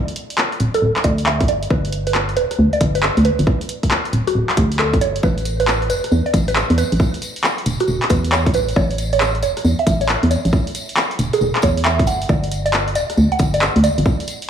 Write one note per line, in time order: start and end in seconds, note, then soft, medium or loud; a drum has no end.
0.08 closed hi-hat medium
0.16 closed hi-hat loud
0.30 closed hi-hat medium
0.38 cross-stick medium
0.38 clap loud
0.52 closed hi-hat soft
0.60 0.70 D1 loud
0.60 closed hi-hat medium
0.74 0.85 A4 loud
0.74 cross-stick soft
0.74 closed hi-hat medium
0.82 0.92 D1 loud
0.96 clap medium
0.96 closed hi-hat soft
1.04 1.42 D2 medium
1.04 1.16 D5 medium
1.04 kick medium
1.04 closed hi-hat loud
1.18 closed hi-hat medium
1.26 1.38 E5 medium
1.26 clap loud
1.40 1.67 G1 medium
1.40 kick loud
1.40 closed hi-hat medium
1.48 1.60 D5 medium
1.48 closed hi-hat medium
1.63 closed hi-hat medium
1.70 2.38 G1 loud
1.70 1.87 B4 loud
1.70 kick loud
1.85 closed hi-hat medium
1.92 closed hi-hat loud
2.07 2.18 B4 medium
2.07 closed hi-hat medium
2.15 cross-stick medium
2.15 clap loud
2.29 closed hi-hat soft
2.37 2.47 D1 loud
2.37 2.53 B4 loud
2.37 closed hi-hat medium
2.51 cross-stick soft
2.51 closed hi-hat medium
2.59 2.69 D2 medium
2.73 2.79 D5 medium
2.73 closed hi-hat soft
2.81 3.10 G1 medium
2.81 kick loud
2.81 closed hi-hat loud
2.95 3.06 B4 loud
2.95 closed hi-hat medium
3.03 clap loud
3.17 3.31 D2 medium
3.17 closed hi-hat medium
3.25 3.41 B4 medium
3.25 closed hi-hat loud
3.39 3.45 G1 loud
3.39 closed hi-hat medium
3.47 kick loud
3.61 closed hi-hat medium
3.69 closed hi-hat loud
3.83 kick medium
3.83 closed hi-hat medium
3.91 cross-stick medium
3.91 clap loud
4.05 closed hi-hat soft
4.13 4.23 D1 loud
4.13 closed hi-hat loud
4.27 4.38 F#4 loud
4.27 cross-stick soft
4.27 closed hi-hat medium
4.35 4.45 D1 loud
4.49 clap medium
4.49 closed hi-hat soft
4.57 4.95 D2 medium
4.57 4.69 G4 medium
4.57 kick loud
4.57 closed hi-hat loud
4.72 closed hi-hat medium
4.79 4.91 A4 medium
4.79 clap loud
4.93 5.20 G1 medium
4.93 kick loud
4.93 closed hi-hat medium
5.01 5.13 C#5 medium
5.01 closed hi-hat medium
5.16 closed hi-hat medium
5.23 5.91 A1 medium
5.23 5.39 B4 loud
5.23 kick loud
5.23 tambourine medium
5.38 closed hi-hat medium
5.38 tambourine soft
5.45 closed hi-hat loud
5.45 tambourine medium
5.60 5.71 B4 medium
5.60 closed hi-hat medium
5.60 tambourine soft
5.68 cross-stick medium
5.68 clap loud
5.68 tambourine medium
5.82 closed hi-hat soft
5.90 6.00 E1 loud
5.90 6.06 B4 loud
5.90 closed hi-hat medium
5.90 tambourine loud
6.04 cross-stick soft
6.04 closed hi-hat medium
6.04 tambourine soft
6.12 6.22 E2 medium
6.12 tambourine medium
6.26 6.32 D5 medium
6.26 closed hi-hat soft
6.34 6.63 A1 medium
6.34 kick loud
6.34 closed hi-hat loud
6.34 tambourine loud
6.48 6.59 B4 medium
6.48 closed hi-hat medium
6.48 tambourine soft
6.55 clap loud
6.55 tambourine medium
6.70 6.84 E2 medium
6.70 closed hi-hat medium
6.78 6.94 B4 medium
6.78 closed hi-hat loud
6.78 tambourine medium
6.92 6.98 A1 loud
6.92 closed hi-hat medium
6.92 tambourine soft
7.00 kick loud
7.00 tambourine medium
7.14 closed hi-hat soft
7.14 tambourine soft
7.22 closed hi-hat loud
7.22 tambourine medium
7.36 closed hi-hat medium
7.36 tambourine soft
7.44 cross-stick medium
7.44 clap loud
7.44 tambourine medium
7.58 closed hi-hat soft
7.66 7.76 E1 loud
7.66 closed hi-hat loud
7.66 tambourine loud
7.80 7.91 F#4 loud
7.80 cross-stick soft
7.80 closed hi-hat medium
7.80 tambourine soft
7.88 7.98 E1 medium
7.88 tambourine medium
8.02 clap medium
8.02 closed hi-hat soft
8.10 8.48 E2 medium
8.10 8.22 B4 medium
8.10 kick loud
8.10 closed hi-hat loud
8.10 tambourine loud
8.24 closed hi-hat medium
8.24 tambourine soft
8.32 8.44 C#5 medium
8.32 clap loud
8.32 tambourine medium
8.46 8.73 A1 loud
8.46 kick loud
8.46 closed hi-hat medium
8.54 8.66 B4 medium
8.54 closed hi-hat loud
8.54 tambourine loud
8.69 closed hi-hat medium
8.69 tambourine soft
8.76 9.44 A1 loud
8.76 8.92 C#5 loud
8.76 kick loud
8.76 tambourine medium
8.90 closed hi-hat soft
8.90 tambourine soft
8.98 closed hi-hat loud
8.98 tambourine medium
9.13 9.24 C#5 loud
9.13 closed hi-hat medium
9.13 tambourine soft
9.21 cross-stick medium
9.21 clap loud
9.21 tambourine medium
9.35 closed hi-hat soft
9.43 9.53 E1 loud
9.43 9.59 C#5 loud
9.43 closed hi-hat medium
9.43 tambourine loud
9.57 cross-stick soft
9.57 closed hi-hat medium
9.57 tambourine soft
9.64 9.75 E2 medium
9.64 tambourine medium
9.79 9.85 E5 medium
9.79 closed hi-hat soft
9.87 10.16 A1 medium
9.87 kick loud
9.87 closed hi-hat loud
9.87 tambourine medium
10.01 10.12 C#5 loud
10.01 closed hi-hat medium
10.01 tambourine soft
10.08 clap loud
10.08 tambourine medium
10.23 10.37 E2 medium
10.23 closed hi-hat medium
10.31 10.47 C#5 loud
10.31 closed hi-hat medium
10.31 tambourine loud
10.45 10.51 A1 loud
10.45 closed hi-hat medium
10.45 tambourine soft
10.53 kick loud
10.53 tambourine medium
10.67 closed hi-hat soft
10.67 tambourine soft
10.75 closed hi-hat loud
10.75 tambourine medium
10.89 closed hi-hat medium
10.89 tambourine soft
10.97 cross-stick medium
10.97 clap loud
10.97 tambourine medium
11.11 closed hi-hat soft
11.19 11.29 E1 loud
11.19 closed hi-hat medium
11.19 tambourine loud
11.33 11.44 G#4 loud
11.33 cross-stick soft
11.33 closed hi-hat medium
11.33 tambourine soft
11.41 11.51 E1 loud
11.41 tambourine soft
11.55 clap medium
11.55 closed hi-hat soft
11.62 12.01 E2 medium
11.62 11.75 C#5 medium
11.62 kick loud
11.62 closed hi-hat loud
11.62 tambourine medium
11.77 closed hi-hat medium
11.77 tambourine soft
11.84 11.97 E5 medium
11.84 clap loud
11.84 tambourine medium
11.99 12.26 G1 medium
11.99 kick loud
11.99 closed hi-hat medium
12.07 12.19 F#5 medium
12.07 closed hi-hat medium
12.07 tambourine loud
12.21 closed hi-hat medium
12.21 tambourine soft
12.29 12.97 G1 loud
12.29 12.45 D5 loud
12.29 kick loud
12.29 tambourine medium
12.43 closed hi-hat medium
12.43 tambourine soft
12.52 closed hi-hat loud
12.52 tambourine medium
12.66 12.77 D5 medium
12.66 closed hi-hat medium
12.66 tambourine soft
12.73 cross-stick medium
12.73 clap loud
12.73 tambourine medium
12.88 closed hi-hat soft
12.95 13.06 D1 loud
12.95 13.12 D5 medium
12.95 closed hi-hat medium
12.95 tambourine medium
13.10 cross-stick soft
13.10 closed hi-hat medium
13.10 tambourine soft
13.17 13.28 D2 medium
13.17 tambourine soft
13.32 13.38 F#5 medium
13.32 closed hi-hat soft
13.39 13.69 G1 medium
13.39 kick loud
13.39 closed hi-hat loud
13.39 tambourine medium
13.54 13.65 D5 medium
13.54 closed hi-hat medium
13.54 tambourine soft
13.62 clap loud
13.62 tambourine medium
13.76 13.90 D2 medium
13.76 closed hi-hat medium
13.83 14.00 D5 medium
13.83 closed hi-hat medium
13.83 tambourine loud
13.98 14.03 G1 loud
13.98 closed hi-hat medium
13.98 tambourine soft
14.06 kick loud
14.06 tambourine medium
14.20 closed hi-hat medium
14.20 tambourine soft
14.28 closed hi-hat loud
14.28 tambourine medium
14.42 closed hi-hat medium
14.42 tambourine soft